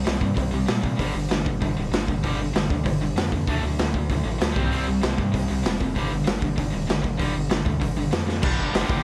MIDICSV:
0, 0, Header, 1, 6, 480
1, 0, Start_track
1, 0, Tempo, 309917
1, 1538, Time_signature, 4, 2, 24, 8
1, 13986, End_track
2, 0, Start_track
2, 0, Title_t, "Distorted electric guitar"
2, 0, Program_c, 0, 30
2, 13045, Note_on_c, 0, 55, 93
2, 13057, Note_on_c, 0, 58, 106
2, 13076, Note_on_c, 0, 62, 117
2, 13087, Note_on_c, 0, 67, 101
2, 13986, Note_off_c, 0, 55, 0
2, 13986, Note_off_c, 0, 58, 0
2, 13986, Note_off_c, 0, 62, 0
2, 13986, Note_off_c, 0, 67, 0
2, 13986, End_track
3, 0, Start_track
3, 0, Title_t, "Distorted electric guitar"
3, 0, Program_c, 1, 30
3, 5407, Note_on_c, 1, 54, 88
3, 5598, Note_off_c, 1, 54, 0
3, 5616, Note_on_c, 1, 54, 79
3, 5839, Note_off_c, 1, 54, 0
3, 5875, Note_on_c, 1, 54, 73
3, 6088, Note_off_c, 1, 54, 0
3, 6104, Note_on_c, 1, 54, 77
3, 6323, Note_off_c, 1, 54, 0
3, 6359, Note_on_c, 1, 54, 76
3, 6570, Note_off_c, 1, 54, 0
3, 6603, Note_on_c, 1, 54, 67
3, 6809, Note_off_c, 1, 54, 0
3, 6828, Note_on_c, 1, 54, 77
3, 7045, Note_off_c, 1, 54, 0
3, 7070, Note_on_c, 1, 48, 88
3, 7291, Note_off_c, 1, 48, 0
3, 9514, Note_on_c, 1, 43, 66
3, 9515, Note_on_c, 1, 50, 75
3, 9708, Note_off_c, 1, 43, 0
3, 9709, Note_off_c, 1, 50, 0
3, 9739, Note_on_c, 1, 43, 68
3, 9755, Note_on_c, 1, 50, 76
3, 9941, Note_off_c, 1, 43, 0
3, 9949, Note_off_c, 1, 50, 0
3, 9992, Note_on_c, 1, 43, 73
3, 9999, Note_on_c, 1, 50, 80
3, 10185, Note_off_c, 1, 50, 0
3, 10187, Note_off_c, 1, 43, 0
3, 13986, End_track
4, 0, Start_track
4, 0, Title_t, "Distorted electric guitar"
4, 0, Program_c, 2, 30
4, 72, Note_on_c, 2, 48, 73
4, 74, Note_on_c, 2, 55, 88
4, 294, Note_off_c, 2, 48, 0
4, 301, Note_off_c, 2, 55, 0
4, 313, Note_on_c, 2, 48, 60
4, 321, Note_on_c, 2, 55, 77
4, 514, Note_off_c, 2, 48, 0
4, 532, Note_on_c, 2, 48, 70
4, 537, Note_off_c, 2, 55, 0
4, 555, Note_on_c, 2, 55, 78
4, 771, Note_off_c, 2, 48, 0
4, 775, Note_off_c, 2, 55, 0
4, 791, Note_on_c, 2, 48, 66
4, 794, Note_on_c, 2, 55, 74
4, 1006, Note_off_c, 2, 48, 0
4, 1022, Note_off_c, 2, 55, 0
4, 1025, Note_on_c, 2, 48, 61
4, 1039, Note_on_c, 2, 55, 66
4, 1244, Note_off_c, 2, 48, 0
4, 1248, Note_off_c, 2, 55, 0
4, 1262, Note_on_c, 2, 48, 58
4, 1267, Note_on_c, 2, 55, 72
4, 1491, Note_off_c, 2, 55, 0
4, 1495, Note_off_c, 2, 48, 0
4, 1495, Note_on_c, 2, 43, 89
4, 1501, Note_on_c, 2, 50, 95
4, 1510, Note_on_c, 2, 55, 90
4, 1743, Note_off_c, 2, 43, 0
4, 1745, Note_off_c, 2, 50, 0
4, 1750, Note_off_c, 2, 55, 0
4, 1773, Note_on_c, 2, 50, 75
4, 1774, Note_on_c, 2, 43, 70
4, 1973, Note_off_c, 2, 43, 0
4, 1980, Note_off_c, 2, 50, 0
4, 1992, Note_on_c, 2, 43, 72
4, 1999, Note_on_c, 2, 50, 81
4, 2222, Note_off_c, 2, 43, 0
4, 2225, Note_off_c, 2, 50, 0
4, 2247, Note_on_c, 2, 43, 65
4, 2254, Note_on_c, 2, 50, 71
4, 2470, Note_off_c, 2, 43, 0
4, 2473, Note_off_c, 2, 50, 0
4, 2489, Note_on_c, 2, 43, 67
4, 2506, Note_on_c, 2, 50, 77
4, 2711, Note_off_c, 2, 43, 0
4, 2720, Note_off_c, 2, 50, 0
4, 2734, Note_on_c, 2, 43, 68
4, 2742, Note_on_c, 2, 50, 68
4, 2949, Note_off_c, 2, 43, 0
4, 2958, Note_off_c, 2, 50, 0
4, 2968, Note_on_c, 2, 43, 71
4, 2979, Note_on_c, 2, 50, 70
4, 3191, Note_off_c, 2, 43, 0
4, 3197, Note_off_c, 2, 50, 0
4, 3209, Note_on_c, 2, 43, 65
4, 3220, Note_on_c, 2, 50, 65
4, 3432, Note_off_c, 2, 43, 0
4, 3438, Note_off_c, 2, 50, 0
4, 3453, Note_on_c, 2, 43, 90
4, 3460, Note_on_c, 2, 50, 88
4, 3468, Note_on_c, 2, 55, 96
4, 3670, Note_off_c, 2, 43, 0
4, 3680, Note_off_c, 2, 50, 0
4, 3689, Note_on_c, 2, 43, 67
4, 3691, Note_off_c, 2, 55, 0
4, 3699, Note_on_c, 2, 50, 71
4, 3907, Note_off_c, 2, 43, 0
4, 3912, Note_off_c, 2, 50, 0
4, 3926, Note_on_c, 2, 43, 78
4, 3931, Note_on_c, 2, 50, 73
4, 4151, Note_off_c, 2, 43, 0
4, 4154, Note_off_c, 2, 50, 0
4, 4186, Note_on_c, 2, 43, 69
4, 4187, Note_on_c, 2, 50, 77
4, 4376, Note_off_c, 2, 43, 0
4, 4380, Note_off_c, 2, 50, 0
4, 4394, Note_on_c, 2, 43, 69
4, 4398, Note_on_c, 2, 50, 79
4, 4626, Note_off_c, 2, 43, 0
4, 4628, Note_off_c, 2, 50, 0
4, 4665, Note_on_c, 2, 50, 67
4, 4674, Note_on_c, 2, 43, 66
4, 4879, Note_off_c, 2, 50, 0
4, 4882, Note_off_c, 2, 43, 0
4, 4897, Note_on_c, 2, 50, 72
4, 4900, Note_on_c, 2, 43, 69
4, 5118, Note_off_c, 2, 50, 0
4, 5120, Note_off_c, 2, 43, 0
4, 5146, Note_on_c, 2, 43, 61
4, 5149, Note_on_c, 2, 50, 73
4, 5363, Note_off_c, 2, 43, 0
4, 5364, Note_off_c, 2, 50, 0
4, 5385, Note_on_c, 2, 50, 91
4, 5388, Note_on_c, 2, 57, 81
4, 5397, Note_on_c, 2, 62, 99
4, 5612, Note_off_c, 2, 50, 0
4, 5614, Note_off_c, 2, 57, 0
4, 5618, Note_off_c, 2, 62, 0
4, 5628, Note_on_c, 2, 50, 59
4, 5643, Note_on_c, 2, 57, 69
4, 5844, Note_off_c, 2, 50, 0
4, 5852, Note_off_c, 2, 57, 0
4, 5872, Note_on_c, 2, 50, 66
4, 5881, Note_on_c, 2, 57, 74
4, 6086, Note_off_c, 2, 50, 0
4, 6091, Note_off_c, 2, 57, 0
4, 6104, Note_on_c, 2, 50, 68
4, 6109, Note_on_c, 2, 57, 71
4, 6323, Note_off_c, 2, 50, 0
4, 6325, Note_off_c, 2, 57, 0
4, 6346, Note_on_c, 2, 50, 70
4, 6349, Note_on_c, 2, 57, 86
4, 6544, Note_off_c, 2, 57, 0
4, 6548, Note_off_c, 2, 50, 0
4, 6563, Note_on_c, 2, 57, 67
4, 6566, Note_on_c, 2, 50, 68
4, 6774, Note_off_c, 2, 57, 0
4, 6776, Note_off_c, 2, 50, 0
4, 6792, Note_on_c, 2, 57, 66
4, 6794, Note_on_c, 2, 50, 57
4, 6997, Note_off_c, 2, 50, 0
4, 7003, Note_on_c, 2, 48, 83
4, 7017, Note_off_c, 2, 57, 0
4, 7024, Note_on_c, 2, 55, 79
4, 7031, Note_on_c, 2, 60, 88
4, 7247, Note_off_c, 2, 48, 0
4, 7265, Note_on_c, 2, 48, 84
4, 7266, Note_off_c, 2, 55, 0
4, 7268, Note_off_c, 2, 60, 0
4, 7285, Note_on_c, 2, 55, 91
4, 7287, Note_on_c, 2, 60, 103
4, 7485, Note_off_c, 2, 48, 0
4, 7501, Note_off_c, 2, 55, 0
4, 7503, Note_on_c, 2, 48, 66
4, 7520, Note_on_c, 2, 55, 71
4, 7524, Note_off_c, 2, 60, 0
4, 7743, Note_off_c, 2, 48, 0
4, 7751, Note_off_c, 2, 55, 0
4, 7768, Note_on_c, 2, 48, 72
4, 7782, Note_on_c, 2, 55, 88
4, 7989, Note_off_c, 2, 48, 0
4, 8002, Note_off_c, 2, 55, 0
4, 8007, Note_on_c, 2, 48, 66
4, 8018, Note_on_c, 2, 55, 81
4, 8221, Note_off_c, 2, 48, 0
4, 8235, Note_off_c, 2, 55, 0
4, 8239, Note_on_c, 2, 48, 67
4, 8253, Note_on_c, 2, 55, 81
4, 8471, Note_off_c, 2, 48, 0
4, 8478, Note_off_c, 2, 55, 0
4, 8491, Note_on_c, 2, 48, 76
4, 8502, Note_on_c, 2, 55, 83
4, 8704, Note_off_c, 2, 48, 0
4, 8714, Note_off_c, 2, 55, 0
4, 8722, Note_on_c, 2, 48, 67
4, 8732, Note_on_c, 2, 55, 78
4, 8953, Note_off_c, 2, 48, 0
4, 8958, Note_off_c, 2, 55, 0
4, 8983, Note_on_c, 2, 48, 69
4, 8993, Note_on_c, 2, 55, 67
4, 9203, Note_off_c, 2, 48, 0
4, 9208, Note_off_c, 2, 55, 0
4, 9218, Note_on_c, 2, 43, 92
4, 9225, Note_on_c, 2, 50, 97
4, 9229, Note_on_c, 2, 55, 88
4, 9407, Note_off_c, 2, 43, 0
4, 9418, Note_off_c, 2, 50, 0
4, 9426, Note_on_c, 2, 43, 73
4, 9437, Note_on_c, 2, 50, 74
4, 9455, Note_off_c, 2, 55, 0
4, 9646, Note_off_c, 2, 43, 0
4, 9653, Note_off_c, 2, 50, 0
4, 9665, Note_on_c, 2, 43, 84
4, 9672, Note_on_c, 2, 50, 78
4, 9884, Note_off_c, 2, 43, 0
4, 9893, Note_off_c, 2, 50, 0
4, 9903, Note_on_c, 2, 43, 61
4, 9912, Note_on_c, 2, 50, 78
4, 10142, Note_off_c, 2, 43, 0
4, 10147, Note_off_c, 2, 50, 0
4, 10158, Note_on_c, 2, 43, 71
4, 10169, Note_on_c, 2, 50, 78
4, 10366, Note_off_c, 2, 50, 0
4, 10375, Note_off_c, 2, 43, 0
4, 10385, Note_on_c, 2, 50, 76
4, 10394, Note_on_c, 2, 43, 72
4, 10623, Note_off_c, 2, 50, 0
4, 10624, Note_off_c, 2, 43, 0
4, 10641, Note_on_c, 2, 50, 77
4, 10642, Note_on_c, 2, 43, 72
4, 10850, Note_off_c, 2, 43, 0
4, 10854, Note_off_c, 2, 50, 0
4, 10869, Note_on_c, 2, 43, 68
4, 10873, Note_on_c, 2, 50, 72
4, 11093, Note_off_c, 2, 43, 0
4, 11099, Note_off_c, 2, 50, 0
4, 11111, Note_on_c, 2, 43, 95
4, 11118, Note_on_c, 2, 50, 92
4, 11133, Note_on_c, 2, 55, 97
4, 11331, Note_off_c, 2, 43, 0
4, 11340, Note_off_c, 2, 50, 0
4, 11350, Note_on_c, 2, 43, 66
4, 11358, Note_on_c, 2, 50, 72
4, 11365, Note_off_c, 2, 55, 0
4, 11584, Note_off_c, 2, 43, 0
4, 11588, Note_off_c, 2, 50, 0
4, 11608, Note_on_c, 2, 43, 68
4, 11621, Note_on_c, 2, 50, 80
4, 11833, Note_off_c, 2, 43, 0
4, 11839, Note_off_c, 2, 50, 0
4, 11852, Note_on_c, 2, 43, 65
4, 11862, Note_on_c, 2, 50, 65
4, 12056, Note_off_c, 2, 43, 0
4, 12074, Note_off_c, 2, 50, 0
4, 12075, Note_on_c, 2, 43, 73
4, 12093, Note_on_c, 2, 50, 76
4, 12305, Note_off_c, 2, 43, 0
4, 12314, Note_off_c, 2, 50, 0
4, 12338, Note_on_c, 2, 43, 75
4, 12350, Note_on_c, 2, 50, 73
4, 12543, Note_off_c, 2, 43, 0
4, 12552, Note_off_c, 2, 50, 0
4, 12562, Note_on_c, 2, 43, 68
4, 12571, Note_on_c, 2, 50, 75
4, 12786, Note_off_c, 2, 50, 0
4, 12787, Note_off_c, 2, 43, 0
4, 12805, Note_on_c, 2, 43, 69
4, 12805, Note_on_c, 2, 50, 71
4, 13025, Note_off_c, 2, 50, 0
4, 13028, Note_off_c, 2, 43, 0
4, 13043, Note_on_c, 2, 50, 96
4, 13045, Note_on_c, 2, 43, 105
4, 13059, Note_on_c, 2, 55, 119
4, 13509, Note_off_c, 2, 50, 0
4, 13510, Note_off_c, 2, 43, 0
4, 13516, Note_on_c, 2, 43, 87
4, 13527, Note_on_c, 2, 50, 96
4, 13528, Note_off_c, 2, 55, 0
4, 13534, Note_on_c, 2, 55, 103
4, 13759, Note_off_c, 2, 50, 0
4, 13765, Note_off_c, 2, 55, 0
4, 13771, Note_on_c, 2, 55, 107
4, 13777, Note_on_c, 2, 50, 91
4, 13784, Note_off_c, 2, 43, 0
4, 13790, Note_on_c, 2, 43, 80
4, 13986, Note_off_c, 2, 43, 0
4, 13986, Note_off_c, 2, 50, 0
4, 13986, Note_off_c, 2, 55, 0
4, 13986, End_track
5, 0, Start_track
5, 0, Title_t, "Analog synth bass"
5, 0, Program_c, 3, 38
5, 120, Note_on_c, 3, 36, 84
5, 318, Note_off_c, 3, 36, 0
5, 327, Note_on_c, 3, 43, 81
5, 560, Note_off_c, 3, 43, 0
5, 576, Note_on_c, 3, 36, 89
5, 805, Note_off_c, 3, 36, 0
5, 818, Note_on_c, 3, 36, 91
5, 1046, Note_off_c, 3, 36, 0
5, 1063, Note_on_c, 3, 46, 94
5, 1518, Note_off_c, 3, 46, 0
5, 1539, Note_on_c, 3, 31, 87
5, 1767, Note_off_c, 3, 31, 0
5, 1777, Note_on_c, 3, 31, 92
5, 2006, Note_off_c, 3, 31, 0
5, 2022, Note_on_c, 3, 31, 91
5, 2478, Note_off_c, 3, 31, 0
5, 2511, Note_on_c, 3, 31, 92
5, 2729, Note_off_c, 3, 31, 0
5, 2739, Note_on_c, 3, 26, 80
5, 2969, Note_off_c, 3, 26, 0
5, 2975, Note_on_c, 3, 31, 94
5, 3207, Note_off_c, 3, 31, 0
5, 3227, Note_on_c, 3, 31, 87
5, 3453, Note_off_c, 3, 31, 0
5, 3473, Note_on_c, 3, 31, 91
5, 3678, Note_off_c, 3, 31, 0
5, 3688, Note_on_c, 3, 31, 87
5, 3924, Note_off_c, 3, 31, 0
5, 3953, Note_on_c, 3, 31, 85
5, 4178, Note_off_c, 3, 31, 0
5, 4187, Note_on_c, 3, 38, 87
5, 4415, Note_off_c, 3, 38, 0
5, 4431, Note_on_c, 3, 31, 99
5, 4640, Note_off_c, 3, 31, 0
5, 4650, Note_on_c, 3, 31, 89
5, 4879, Note_off_c, 3, 31, 0
5, 4888, Note_on_c, 3, 41, 92
5, 5354, Note_off_c, 3, 41, 0
5, 5388, Note_on_c, 3, 38, 89
5, 5617, Note_off_c, 3, 38, 0
5, 5625, Note_on_c, 3, 38, 87
5, 5855, Note_off_c, 3, 38, 0
5, 5879, Note_on_c, 3, 38, 91
5, 6331, Note_off_c, 3, 38, 0
5, 6353, Note_on_c, 3, 38, 88
5, 6580, Note_off_c, 3, 38, 0
5, 6589, Note_on_c, 3, 33, 93
5, 6818, Note_off_c, 3, 33, 0
5, 6826, Note_on_c, 3, 38, 82
5, 7057, Note_off_c, 3, 38, 0
5, 7073, Note_on_c, 3, 36, 95
5, 7300, Note_off_c, 3, 36, 0
5, 7330, Note_on_c, 3, 36, 91
5, 7549, Note_off_c, 3, 36, 0
5, 7560, Note_on_c, 3, 36, 93
5, 7784, Note_off_c, 3, 36, 0
5, 7801, Note_on_c, 3, 36, 91
5, 8025, Note_off_c, 3, 36, 0
5, 8035, Note_on_c, 3, 43, 88
5, 8261, Note_off_c, 3, 43, 0
5, 8281, Note_on_c, 3, 36, 96
5, 8505, Note_off_c, 3, 36, 0
5, 8529, Note_on_c, 3, 36, 93
5, 8749, Note_off_c, 3, 36, 0
5, 8763, Note_on_c, 3, 29, 85
5, 9214, Note_off_c, 3, 29, 0
5, 9238, Note_on_c, 3, 31, 88
5, 9462, Note_off_c, 3, 31, 0
5, 9490, Note_on_c, 3, 31, 94
5, 9709, Note_off_c, 3, 31, 0
5, 9725, Note_on_c, 3, 31, 88
5, 10174, Note_off_c, 3, 31, 0
5, 10193, Note_on_c, 3, 31, 94
5, 10420, Note_off_c, 3, 31, 0
5, 10438, Note_on_c, 3, 26, 91
5, 10662, Note_off_c, 3, 26, 0
5, 10685, Note_on_c, 3, 31, 92
5, 10899, Note_off_c, 3, 31, 0
5, 10908, Note_on_c, 3, 31, 95
5, 11136, Note_off_c, 3, 31, 0
5, 11153, Note_on_c, 3, 31, 95
5, 11378, Note_off_c, 3, 31, 0
5, 11406, Note_on_c, 3, 31, 93
5, 11607, Note_off_c, 3, 31, 0
5, 11616, Note_on_c, 3, 31, 85
5, 11849, Note_off_c, 3, 31, 0
5, 11863, Note_on_c, 3, 38, 81
5, 12092, Note_off_c, 3, 38, 0
5, 12115, Note_on_c, 3, 31, 95
5, 12320, Note_off_c, 3, 31, 0
5, 12329, Note_on_c, 3, 31, 85
5, 12563, Note_off_c, 3, 31, 0
5, 12589, Note_on_c, 3, 41, 88
5, 13040, Note_off_c, 3, 41, 0
5, 13067, Note_on_c, 3, 31, 99
5, 13215, Note_off_c, 3, 31, 0
5, 13312, Note_on_c, 3, 31, 99
5, 13459, Note_off_c, 3, 31, 0
5, 13552, Note_on_c, 3, 31, 92
5, 13698, Note_off_c, 3, 31, 0
5, 13790, Note_on_c, 3, 31, 90
5, 13936, Note_off_c, 3, 31, 0
5, 13986, End_track
6, 0, Start_track
6, 0, Title_t, "Drums"
6, 97, Note_on_c, 9, 46, 53
6, 108, Note_on_c, 9, 38, 98
6, 252, Note_off_c, 9, 46, 0
6, 263, Note_off_c, 9, 38, 0
6, 329, Note_on_c, 9, 36, 77
6, 484, Note_off_c, 9, 36, 0
6, 573, Note_on_c, 9, 36, 88
6, 574, Note_on_c, 9, 46, 55
6, 727, Note_off_c, 9, 36, 0
6, 729, Note_off_c, 9, 46, 0
6, 1050, Note_on_c, 9, 46, 58
6, 1061, Note_on_c, 9, 38, 112
6, 1205, Note_off_c, 9, 46, 0
6, 1216, Note_off_c, 9, 38, 0
6, 1294, Note_on_c, 9, 36, 81
6, 1449, Note_off_c, 9, 36, 0
6, 1537, Note_on_c, 9, 36, 85
6, 1541, Note_on_c, 9, 46, 56
6, 1692, Note_off_c, 9, 36, 0
6, 1695, Note_off_c, 9, 46, 0
6, 2022, Note_on_c, 9, 46, 46
6, 2033, Note_on_c, 9, 38, 101
6, 2177, Note_off_c, 9, 46, 0
6, 2188, Note_off_c, 9, 38, 0
6, 2264, Note_on_c, 9, 36, 82
6, 2419, Note_off_c, 9, 36, 0
6, 2505, Note_on_c, 9, 36, 93
6, 2518, Note_on_c, 9, 46, 45
6, 2660, Note_off_c, 9, 36, 0
6, 2672, Note_off_c, 9, 46, 0
6, 2990, Note_on_c, 9, 46, 52
6, 3001, Note_on_c, 9, 38, 103
6, 3145, Note_off_c, 9, 46, 0
6, 3156, Note_off_c, 9, 38, 0
6, 3228, Note_on_c, 9, 36, 79
6, 3382, Note_off_c, 9, 36, 0
6, 3466, Note_on_c, 9, 36, 84
6, 3469, Note_on_c, 9, 46, 55
6, 3621, Note_off_c, 9, 36, 0
6, 3624, Note_off_c, 9, 46, 0
6, 3953, Note_on_c, 9, 46, 49
6, 3964, Note_on_c, 9, 38, 99
6, 4108, Note_off_c, 9, 46, 0
6, 4118, Note_off_c, 9, 38, 0
6, 4187, Note_on_c, 9, 36, 81
6, 4342, Note_off_c, 9, 36, 0
6, 4427, Note_on_c, 9, 36, 95
6, 4434, Note_on_c, 9, 46, 59
6, 4582, Note_off_c, 9, 36, 0
6, 4589, Note_off_c, 9, 46, 0
6, 4911, Note_on_c, 9, 46, 59
6, 4922, Note_on_c, 9, 38, 115
6, 5066, Note_off_c, 9, 46, 0
6, 5077, Note_off_c, 9, 38, 0
6, 5144, Note_on_c, 9, 36, 75
6, 5299, Note_off_c, 9, 36, 0
6, 5381, Note_on_c, 9, 36, 88
6, 5383, Note_on_c, 9, 46, 50
6, 5536, Note_off_c, 9, 36, 0
6, 5538, Note_off_c, 9, 46, 0
6, 5867, Note_on_c, 9, 46, 51
6, 5878, Note_on_c, 9, 38, 107
6, 6022, Note_off_c, 9, 46, 0
6, 6032, Note_off_c, 9, 38, 0
6, 6103, Note_on_c, 9, 36, 75
6, 6258, Note_off_c, 9, 36, 0
6, 6345, Note_on_c, 9, 36, 88
6, 6349, Note_on_c, 9, 46, 48
6, 6500, Note_off_c, 9, 36, 0
6, 6504, Note_off_c, 9, 46, 0
6, 6830, Note_on_c, 9, 46, 53
6, 6840, Note_on_c, 9, 38, 102
6, 6984, Note_off_c, 9, 46, 0
6, 6995, Note_off_c, 9, 38, 0
6, 7066, Note_on_c, 9, 36, 97
6, 7221, Note_off_c, 9, 36, 0
6, 7308, Note_on_c, 9, 46, 47
6, 7463, Note_off_c, 9, 46, 0
6, 7785, Note_on_c, 9, 46, 50
6, 7796, Note_on_c, 9, 38, 107
6, 7940, Note_off_c, 9, 46, 0
6, 7951, Note_off_c, 9, 38, 0
6, 8028, Note_on_c, 9, 36, 82
6, 8183, Note_off_c, 9, 36, 0
6, 8270, Note_on_c, 9, 36, 82
6, 8270, Note_on_c, 9, 46, 59
6, 8425, Note_off_c, 9, 36, 0
6, 8425, Note_off_c, 9, 46, 0
6, 8756, Note_on_c, 9, 46, 55
6, 8767, Note_on_c, 9, 38, 112
6, 8911, Note_off_c, 9, 46, 0
6, 8922, Note_off_c, 9, 38, 0
6, 8993, Note_on_c, 9, 36, 82
6, 9148, Note_off_c, 9, 36, 0
6, 9233, Note_on_c, 9, 36, 80
6, 9242, Note_on_c, 9, 46, 53
6, 9388, Note_off_c, 9, 36, 0
6, 9397, Note_off_c, 9, 46, 0
6, 9707, Note_on_c, 9, 46, 59
6, 9718, Note_on_c, 9, 38, 104
6, 9862, Note_off_c, 9, 46, 0
6, 9873, Note_off_c, 9, 38, 0
6, 9948, Note_on_c, 9, 36, 86
6, 10103, Note_off_c, 9, 36, 0
6, 10190, Note_on_c, 9, 36, 88
6, 10190, Note_on_c, 9, 46, 54
6, 10345, Note_off_c, 9, 36, 0
6, 10345, Note_off_c, 9, 46, 0
6, 10676, Note_on_c, 9, 46, 57
6, 10687, Note_on_c, 9, 38, 112
6, 10831, Note_off_c, 9, 46, 0
6, 10842, Note_off_c, 9, 38, 0
6, 10907, Note_on_c, 9, 36, 80
6, 11062, Note_off_c, 9, 36, 0
6, 11144, Note_on_c, 9, 36, 91
6, 11151, Note_on_c, 9, 46, 53
6, 11299, Note_off_c, 9, 36, 0
6, 11305, Note_off_c, 9, 46, 0
6, 11623, Note_on_c, 9, 46, 50
6, 11634, Note_on_c, 9, 38, 108
6, 11778, Note_off_c, 9, 46, 0
6, 11789, Note_off_c, 9, 38, 0
6, 11865, Note_on_c, 9, 36, 87
6, 12020, Note_off_c, 9, 36, 0
6, 12104, Note_on_c, 9, 36, 92
6, 12113, Note_on_c, 9, 46, 51
6, 12259, Note_off_c, 9, 36, 0
6, 12268, Note_off_c, 9, 46, 0
6, 12579, Note_on_c, 9, 46, 60
6, 12590, Note_on_c, 9, 38, 111
6, 12734, Note_off_c, 9, 46, 0
6, 12745, Note_off_c, 9, 38, 0
6, 12833, Note_on_c, 9, 38, 58
6, 12987, Note_off_c, 9, 38, 0
6, 13051, Note_on_c, 9, 49, 119
6, 13060, Note_on_c, 9, 36, 119
6, 13206, Note_off_c, 9, 49, 0
6, 13215, Note_off_c, 9, 36, 0
6, 13543, Note_on_c, 9, 46, 69
6, 13553, Note_on_c, 9, 38, 108
6, 13697, Note_off_c, 9, 46, 0
6, 13708, Note_off_c, 9, 38, 0
6, 13776, Note_on_c, 9, 36, 93
6, 13931, Note_off_c, 9, 36, 0
6, 13986, End_track
0, 0, End_of_file